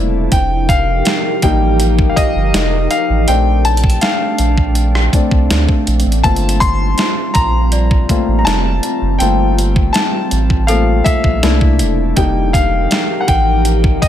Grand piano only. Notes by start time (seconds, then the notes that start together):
Already playing: A3 A#3 D4 E4 A5
0.32 G5
0.69 F5
1.43 G3 A#3 D#4 G5
2.09 F5
2.16 D#5
2.91 F5
3.28 A3 C4 D4 G5
3.65 A5
4.02 F5
5.14 A3 C4 D4
6.23 A3 A#3 C4 F4 A5
6.60 C6
7.34 A#5
8.10 A3 A#3 C4 F4
8.39 A#5
8.45 A5
9.19 A3 A#3 C4 F4 G5
9.93 A5
10.67 A3 A#3 C4 F4 F5
11.04 E5
11.43 A3 A#3 D4 E4
12.16 G3 A#3 D#4 G5
12.53 F5
13.21 F#5
13.28 G5
14.02 D#5